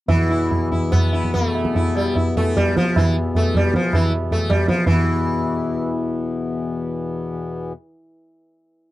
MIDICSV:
0, 0, Header, 1, 4, 480
1, 0, Start_track
1, 0, Tempo, 413508
1, 100, Time_signature, 3, 2, 24, 8
1, 2978, Tempo, 391389
1, 4418, Tempo, 374065
1, 5858, Tempo, 351700
1, 7778, Tempo, 328407
1, 11647, End_track
2, 0, Start_track
2, 0, Title_t, "Sitar"
2, 0, Program_c, 0, 104
2, 98, Note_on_c, 0, 52, 75
2, 345, Note_on_c, 0, 64, 34
2, 573, Note_off_c, 0, 64, 0
2, 786, Note_off_c, 0, 52, 0
2, 832, Note_on_c, 0, 64, 29
2, 1059, Note_off_c, 0, 64, 0
2, 1067, Note_on_c, 0, 59, 82
2, 1309, Note_on_c, 0, 64, 28
2, 1537, Note_off_c, 0, 64, 0
2, 1548, Note_off_c, 0, 59, 0
2, 1553, Note_on_c, 0, 57, 89
2, 2042, Note_on_c, 0, 64, 37
2, 2261, Note_off_c, 0, 64, 0
2, 2276, Note_off_c, 0, 57, 0
2, 2280, Note_on_c, 0, 55, 65
2, 2497, Note_off_c, 0, 55, 0
2, 2512, Note_on_c, 0, 64, 37
2, 2730, Note_off_c, 0, 64, 0
2, 2751, Note_on_c, 0, 57, 79
2, 2980, Note_on_c, 0, 55, 78
2, 2988, Note_off_c, 0, 57, 0
2, 3227, Note_off_c, 0, 55, 0
2, 3232, Note_on_c, 0, 53, 84
2, 3477, Note_off_c, 0, 53, 0
2, 3479, Note_on_c, 0, 52, 75
2, 3696, Note_off_c, 0, 52, 0
2, 3957, Note_on_c, 0, 57, 86
2, 4196, Note_off_c, 0, 57, 0
2, 4204, Note_on_c, 0, 55, 74
2, 4434, Note_off_c, 0, 55, 0
2, 4439, Note_on_c, 0, 53, 68
2, 4681, Note_off_c, 0, 53, 0
2, 4685, Note_on_c, 0, 52, 76
2, 4901, Note_off_c, 0, 52, 0
2, 5164, Note_on_c, 0, 57, 69
2, 5390, Note_on_c, 0, 55, 72
2, 5401, Note_off_c, 0, 57, 0
2, 5628, Note_off_c, 0, 55, 0
2, 5633, Note_on_c, 0, 53, 66
2, 5860, Note_off_c, 0, 53, 0
2, 5866, Note_on_c, 0, 52, 68
2, 7261, Note_off_c, 0, 52, 0
2, 11647, End_track
3, 0, Start_track
3, 0, Title_t, "Harmonium"
3, 0, Program_c, 1, 20
3, 99, Note_on_c, 1, 40, 65
3, 100, Note_on_c, 1, 47, 61
3, 5837, Note_off_c, 1, 40, 0
3, 5840, Note_off_c, 1, 47, 0
3, 5856, Note_on_c, 1, 40, 63
3, 5859, Note_on_c, 1, 47, 58
3, 9910, Note_off_c, 1, 40, 0
3, 9911, Note_off_c, 1, 47, 0
3, 11647, End_track
4, 0, Start_track
4, 0, Title_t, "Tabla"
4, 97, Note_on_c, 9, 63, 93
4, 97, Note_on_c, 9, 64, 68
4, 213, Note_off_c, 9, 63, 0
4, 213, Note_off_c, 9, 64, 0
4, 594, Note_on_c, 9, 60, 68
4, 594, Note_on_c, 9, 64, 57
4, 711, Note_off_c, 9, 60, 0
4, 711, Note_off_c, 9, 64, 0
4, 836, Note_on_c, 9, 64, 47
4, 952, Note_off_c, 9, 64, 0
4, 1075, Note_on_c, 9, 60, 70
4, 1075, Note_on_c, 9, 64, 67
4, 1191, Note_off_c, 9, 60, 0
4, 1191, Note_off_c, 9, 64, 0
4, 1319, Note_on_c, 9, 62, 54
4, 1435, Note_off_c, 9, 62, 0
4, 1438, Note_on_c, 9, 64, 50
4, 1554, Note_off_c, 9, 64, 0
4, 1564, Note_on_c, 9, 63, 64
4, 1564, Note_on_c, 9, 64, 59
4, 1680, Note_off_c, 9, 63, 0
4, 1680, Note_off_c, 9, 64, 0
4, 1798, Note_on_c, 9, 60, 54
4, 1915, Note_off_c, 9, 60, 0
4, 1915, Note_on_c, 9, 37, 53
4, 2031, Note_off_c, 9, 37, 0
4, 2034, Note_on_c, 9, 63, 73
4, 2034, Note_on_c, 9, 64, 63
4, 2150, Note_off_c, 9, 63, 0
4, 2150, Note_off_c, 9, 64, 0
4, 2270, Note_on_c, 9, 60, 55
4, 2386, Note_off_c, 9, 60, 0
4, 2503, Note_on_c, 9, 63, 73
4, 2503, Note_on_c, 9, 64, 64
4, 2619, Note_off_c, 9, 63, 0
4, 2619, Note_off_c, 9, 64, 0
4, 2745, Note_on_c, 9, 63, 61
4, 2745, Note_on_c, 9, 64, 66
4, 2861, Note_off_c, 9, 63, 0
4, 2861, Note_off_c, 9, 64, 0
4, 2977, Note_on_c, 9, 63, 56
4, 2977, Note_on_c, 9, 64, 65
4, 3099, Note_off_c, 9, 63, 0
4, 3099, Note_off_c, 9, 64, 0
4, 3224, Note_on_c, 9, 37, 69
4, 3347, Note_off_c, 9, 37, 0
4, 3463, Note_on_c, 9, 60, 83
4, 3463, Note_on_c, 9, 64, 72
4, 3585, Note_off_c, 9, 60, 0
4, 3585, Note_off_c, 9, 64, 0
4, 3940, Note_on_c, 9, 63, 68
4, 3940, Note_on_c, 9, 64, 58
4, 4063, Note_off_c, 9, 63, 0
4, 4063, Note_off_c, 9, 64, 0
4, 4182, Note_on_c, 9, 63, 69
4, 4182, Note_on_c, 9, 64, 66
4, 4305, Note_off_c, 9, 63, 0
4, 4305, Note_off_c, 9, 64, 0
4, 4416, Note_on_c, 9, 37, 67
4, 4544, Note_off_c, 9, 37, 0
4, 4664, Note_on_c, 9, 60, 88
4, 4664, Note_on_c, 9, 64, 74
4, 4792, Note_off_c, 9, 60, 0
4, 4792, Note_off_c, 9, 64, 0
4, 5152, Note_on_c, 9, 63, 55
4, 5152, Note_on_c, 9, 64, 56
4, 5280, Note_off_c, 9, 63, 0
4, 5280, Note_off_c, 9, 64, 0
4, 5396, Note_on_c, 9, 63, 68
4, 5396, Note_on_c, 9, 64, 65
4, 5524, Note_off_c, 9, 63, 0
4, 5524, Note_off_c, 9, 64, 0
4, 5629, Note_on_c, 9, 37, 70
4, 5757, Note_off_c, 9, 37, 0
4, 5861, Note_on_c, 9, 60, 81
4, 5861, Note_on_c, 9, 64, 80
4, 5997, Note_off_c, 9, 60, 0
4, 5997, Note_off_c, 9, 64, 0
4, 11647, End_track
0, 0, End_of_file